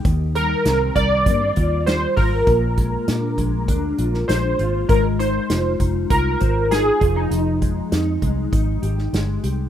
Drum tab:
HH |x-x-x-x-x-x-x-o-|x-x-x-x-x-x-x-x-|x-x-x-x-x-x-x-x-|x-x-x-x-x-x-x-x-|
SD |----o-------o---|----o------oo---|----o-------o---|----o------oo---|
BD |o-----o-o-o---o-|o-o---o-o-------|o-----o-o-o---o-|--o---o-o-------|